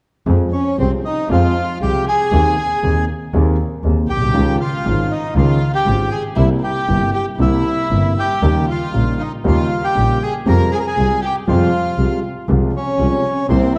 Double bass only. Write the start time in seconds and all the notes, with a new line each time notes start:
0.27 F2
0.79 C2
1.30 F2
1.81 C2
2.32 D#2
2.83 D#2
3.34 D#2
3.84 D#2
4.09 B1
4.34 C#2
4.85 G#1
5.35 C#2
5.86 G#1
6.37 C2
6.89 G1
7.39 C2
7.91 G1
8.42 D#2
8.93 A#1
9.45 D#2
9.96 A#1
10.46 F2
10.97 C2
11.48 F2
11.98 C2
12.49 C2
12.99 C2
13.50 C2